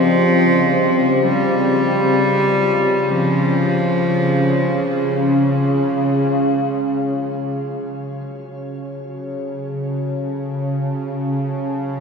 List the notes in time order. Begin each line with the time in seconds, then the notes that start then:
Already playing: C#3 F3 C4 F4 G4 D5 D#5
1.23 G3
3.09 F3 C#4
3.42 C#5
4.25 G#4
4.80 F5
6.83 C#3 F#4
7.45 A5
9.13 G#5